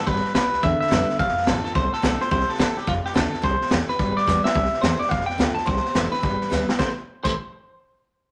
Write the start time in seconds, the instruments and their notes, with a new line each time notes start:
0.07 upright bass G1, steel-string acoustic guitar G3, clean electric guitar B4, kick, snare
0.16 snare
0.24 muted upright bass stroke, snare
0.35 upright bass C2, steel-string acoustic guitar G3 B3 E4, clean electric guitar B4, kick, snare, hi-hat pedal
0.53 upright bass D2, snare
0.63 upright bass E2, steel-string acoustic guitar D3, clean electric guitar E5, kick, snare
0.81 clean electric guitar E5, muted upright bass stroke, snare
0.86 snare
0.91 upright bass F2, steel-string acoustic guitar G3 B3 E4, kick, snare, hi-hat pedal
1.09 steel-string acoustic guitar B3 E4, snare
1.19 upright bass F1, steel-string acoustic guitar F2, clean electric guitar F5, kick, snare
1.28 snare
1.37 muted upright bass stroke, snare
1.42 snare
1.47 upright bass A1, steel-string acoustic guitar D3 A3 C4 F4, clean electric guitar A4, kick, snare, hi-hat pedal
1.64 steel-string acoustic guitar C4 F4, clean electric guitar A4, muted upright bass stroke, snare
1.75 upright bass C2, steel-string acoustic guitar A2, clean electric guitar C5, kick, snare
1.93 clean electric guitar A4, snare
2.02 upright bass B1, steel-string acoustic guitar D3 A3 C4 F4, kick, snare, hi-hat pedal
2.20 steel-string acoustic guitar C4 F4, clean electric guitar C5, snare
2.31 upright bass C2, steel-string acoustic guitar C3, clean electric guitar C5, kick, snare
2.40 snare
2.49 clean electric guitar A4, muted upright bass stroke, snare
2.54 steel-string acoustic guitar E3, snare
2.59 upright bass F2, steel-string acoustic guitar A3 C4 E4, clean electric guitar A4, kick, snare, hi-hat pedal
2.76 upright bass E2, steel-string acoustic guitar C4 E4, clean electric guitar G4, snare
2.87 upright bass F1, steel-string acoustic guitar F2, clean electric guitar F4, kick, snare
3.05 clean electric guitar G4, muted upright bass stroke, snare
3.14 upright bass D2, steel-string acoustic guitar D3 A3 C4 F4, clean electric guitar A4, kick, snare, hi-hat pedal
3.32 steel-string acoustic guitar C4 F4, muted upright bass stroke, snare
3.42 upright bass C2, steel-string acoustic guitar C3, clean electric guitar C5, kick, snare
3.61 muted upright bass stroke, snare
3.66 snare
3.70 upright bass E2, steel-string acoustic guitar E3 A3 C4 E4, kick, snare, hi-hat pedal
3.89 steel-string acoustic guitar C4 E4, clean electric guitar B4, muted upright bass stroke, snare
3.99 upright bass G1, steel-string acoustic guitar G3, kick, snare
4.17 clean electric guitar D5, muted upright bass stroke, snare
4.27 upright bass E2, steel-string acoustic guitar G3 B3 E4, kick, snare, hi-hat pedal
4.44 steel-string acoustic guitar B3 E4, clean electric guitar E5, muted upright bass stroke, snare
4.54 upright bass C2, steel-string acoustic guitar C3, kick, snare
4.64 snare
4.73 muted upright bass stroke, snare
4.82 upright bass E2, steel-string acoustic guitar E3 A3 C4 E4, clean electric guitar C5, snare, hi-hat pedal
4.99 steel-string acoustic guitar C4 E4, clean electric guitar D5, muted upright bass stroke, snare
5.07 clean electric guitar F5, snare
5.11 upright bass F1, steel-string acoustic guitar F2, kick, snare
5.20 snare
5.26 clean electric guitar G5, muted upright bass stroke, snare
5.38 upright bass D2, steel-string acoustic guitar D3 A3 C4 F4, snare, hi-hat pedal
5.55 steel-string acoustic guitar C4, clean electric guitar A5, muted upright bass stroke, snare
5.66 upright bass C2, steel-string acoustic guitar C3, clean electric guitar C5, kick, snare
5.76 snare
5.85 muted upright bass stroke, snare
5.94 upright bass F1, steel-string acoustic guitar E3 A3 C4 E4, snare, hi-hat pedal
6.12 steel-string acoustic guitar C4 E4, clean electric guitar B4, snare
6.23 upright bass G1, steel-string acoustic guitar G3, kick, snare
6.41 snare
6.50 upright bass D2, steel-string acoustic guitar G3 B3 E4, snare, hi-hat pedal
6.68 steel-string acoustic guitar B3 E4, muted upright bass stroke, snare
6.78 upright bass C2, steel-string acoustic guitar C3 E3 A3 C4 E4, clean electric guitar C5, kick, snare
7.24 upright bass C2, steel-string acoustic guitar C3 E3 A3 C4 E4, clean electric guitar C5, kick, crash